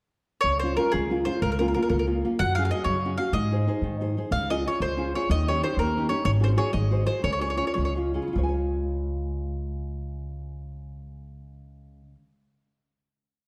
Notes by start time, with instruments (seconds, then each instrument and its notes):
0.41 upright bass C#2, mandolin C#5
0.45 nylon-string guitar C#3
0.59 nylon-string guitar G#3 C#4, mandolin C5
0.64 nylon-string guitar F4
0.77 nylon-string guitar G#3 C#4 F4, mandolin A#4
0.92 upright bass C#2, nylon-string guitar G#3, mandolin G#4
1.10 nylon-string guitar G#3 C#4 F4
1.25 nylon-string guitar G#3 C#4 F4, mandolin C5
1.42 upright bass C#2, nylon-string guitar C#3, mandolin A#4
1.52 mandolin A#4
1.59 nylon-string guitar A#3 C#4 F4, mandolin A#4
1.68 mandolin A#4
1.74 nylon-string guitar A#3 C#4 F4, mandolin A#4
1.83 mandolin A#4
1.90 upright bass C#2, nylon-string guitar C#3, mandolin A#4
1.99 mandolin A#4
2.07 nylon-string guitar A#3 C#4 F4
2.25 nylon-string guitar A#3 C#4 F4
2.39 upright bass F#2, nylon-string guitar F#3, mandolin F#5
2.55 nylon-string guitar C#4 F#4 G#4, mandolin F5
2.65 mandolin F5
2.71 nylon-string guitar C#4 F#4 G#4, mandolin D#5
2.84 upright bass F#2, nylon-string guitar C#3, mandolin C#5
3.05 nylon-string guitar C#4 F#4 G#4
3.18 nylon-string guitar C#4 F#4 G#4, mandolin F5
3.32 upright bass G#2, nylon-string guitar G#3, mandolin D#5
3.51 nylon-string guitar D#4 G#4 C5
3.67 nylon-string guitar D#4 G#4 C5
3.82 upright bass G#2, nylon-string guitar D#3
4.01 nylon-string guitar D#4 G#4 C5
4.17 nylon-string guitar D#4 G#4 C5
4.31 upright bass C#2, nylon-string guitar C#3, mandolin F5
4.50 nylon-string guitar C#4 F4 G#4, mandolin D#5
4.65 nylon-string guitar C#4 F4 G#4, mandolin C#5
4.80 upright bass C#2, nylon-string guitar G#3, mandolin C5
4.97 nylon-string guitar C#4 F4 G#4
5.15 nylon-string guitar C#4 F4 G#4, mandolin C#5
5.30 upright bass D#2, nylon-string guitar D#3, mandolin D#5
5.48 nylon-string guitar C#4 D#4 G4, mandolin C#5
5.64 nylon-string guitar C#4 D#4 G4, mandolin C5
5.77 upright bass D#2, nylon-string guitar A#3, mandolin A#4
5.97 nylon-string guitar C#4 D#4 G4
6.09 nylon-string guitar C#4 D#4 G4, mandolin C#5
6.25 upright bass G#1, nylon-string guitar G#3, mandolin C#5
6.40 nylon-string guitar C#4 F#4 G#4, mandolin C5
6.56 nylon-string guitar C#4 F#4 G#4, mandolin C#5
6.73 upright bass G#1, nylon-string guitar G#3, mandolin D#5
6.90 nylon-string guitar F#4 G#4 C5
7.06 nylon-string guitar F#4 G#4 C5, mandolin C5
7.22 upright bass C#2, nylon-string guitar C#3, mandolin C#5
7.33 mandolin C#5
7.39 nylon-string guitar C#4 F4 G#4, mandolin C#5
7.50 mandolin C#5
7.56 nylon-string guitar C#4 F4 G#4, mandolin C#5
7.67 mandolin C#5
7.74 upright bass C#2, nylon-string guitar G#3, mandolin C#5
7.85 mandolin C#5
7.95 nylon-string guitar C#4 F4 G#4
8.14 nylon-string guitar C#4 F4 G#4
8.22 nylon-string guitar C#3
8.28 nylon-string guitar G#3
8.33 upright bass C#2, nylon-string guitar F4
8.38 nylon-string guitar C#5
8.43 nylon-string guitar G#5
8.49 nylon-string guitar C#5